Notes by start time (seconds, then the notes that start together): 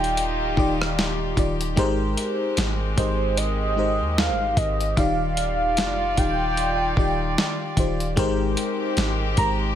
Already playing: D#1 D#3 D#4 F4 G4 D5 D#5 G5
0.04 closed hi-hat
0.17 closed hi-hat
0.41 D1
0.56 D#1 D#3 D#4 F4 G4 D5, kick
0.82 cross-stick
0.99 snare
1.36 D#1 D#3 D#4 F4 G4 D5, kick, closed hi-hat
1.61 closed hi-hat
1.76 G#1 G#3 C4 D#4 G4 A#4 C5, kick, closed hi-hat
2.17 closed hi-hat
2.57 G#1, snare, closed hi-hat
2.96 G#1 G#3 D#4 G4 A#4 C5 D#5, kick, closed hi-hat
3.37 D#5, closed hi-hat
3.76 G#3 D#4 G4 A#4 C5
4.00 D#2
4.17 F5, snare
4.29 G#1
4.57 G#1 D#5, kick, closed hi-hat
4.81 closed hi-hat
4.96 D#1 D#3 D#4 F4 G4 D5 F5, kick, closed hi-hat
5.37 closed hi-hat
5.77 F1, snare, closed hi-hat
6.17 D#1 D#3 D#4 F4 G4 F5 G5, kick, closed hi-hat
6.57 closed hi-hat
6.96 D#1 D#3 D#4 F4 G4 D5, kick
7.38 snare
7.76 D#1 D#3 D#4 F4 G4 C5, kick, closed hi-hat
8.00 closed hi-hat
8.16 G#1 G#3 C4 D#4 G4 A#4 C5, kick, closed hi-hat
8.57 closed hi-hat
8.97 G#1, snare, closed hi-hat
9.37 G#1 G#3 D#4 G4 A#4 C5 A#5, kick, closed hi-hat